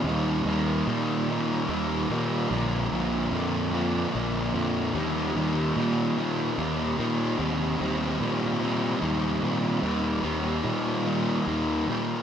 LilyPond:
<<
  \new Staff \with { instrumentName = "Distorted electric guitar" } { \clef bass \time 6/8 \key ees \major \tempo 4. = 49 <ees g bes ees'>8 <ees g bes ees'>8 <ees g bes ees'>8 <ees g bes ees'>8 <ees g bes ees'>8 <ees g bes ees'>8 | <bes, d f bes d'>8 <bes, d f bes d'>8 <bes, d f bes d'>8 <bes, d f bes d'>8 <bes, d f bes d'>8 <bes, d f bes d'>8 | <ees g bes ees'>8 <ees g bes ees'>8 <ees g bes ees'>8 <ees g bes ees'>8 <ees g bes ees'>8 <ees g bes ees'>8 | <ees g c' ees'>8 <ees g c' ees'>8 <ees g c' ees'>8 <ees g c' ees'>8 <ees g c' ees'>8 <ees g c' ees'>8 |
<ees g bes ees'>8 <ees g bes ees'>8 <ees g bes ees'>8 <ees g bes ees'>8 <ees g bes ees'>8 <ees g bes ees'>8 | }
  \new Staff \with { instrumentName = "Fingered electric bass" } { \clef bass \time 6/8 \key ees \major ees,8 ees,8 bes,4 ees,8 bes,8 | bes,,8 bes,,8 f,4 bes,,8 f,8 | ees,8 ees,8 bes,4 ees,8 bes,8 | ees,8 ees,8 bes,4 ees,8 bes,8 |
ees,8 ees,8 bes,4 ees,8 bes,8 | }
>>